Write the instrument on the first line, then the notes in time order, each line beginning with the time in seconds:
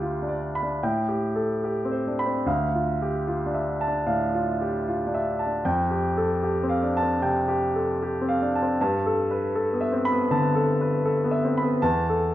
grand piano
Already playing: D2 F4 G4 F5
0.02 F4
0.22 D4
0.29 D5
0.55 B5
0.63 D4
0.83 A2 G5
1.08 G4
1.36 A4
1.64 G4
1.85 C4
1.91 C5
2.07 D4
2.19 B5
2.26 C4
2.46 D2 F5
2.75 F4
3.02 G4
3.28 F4
3.46 D4
3.54 E5
3.81 A5
3.88 D4
4.06 A2 F5
4.34 F4
4.61 G4
4.88 F4
5.07 D4
5.14 E5
5.39 A5
5.47 D4
5.65 F2 G5
5.91 G4
6.17 A4
6.43 G4
6.63 C4
6.69 F5
6.83 D4
6.97 A5
7.02 C4
7.22 C3 G5
7.48 G4
7.75 A4
8.02 G4
8.21 C4
8.29 F5
8.42 D4
8.56 A5
8.62 C4
8.81 G2 A5
9.06 A4
9.31 B4
9.55 A4
9.73 B3
9.81 E5
9.92 C4
10.05 B5
10.12 B3
10.31 D3 A5
10.55 A4
10.81 B4
11.05 A4
11.24 B3
11.31 E5
11.44 C4
11.57 B5
11.63 B3
11.82 E2 A5
12.10 A4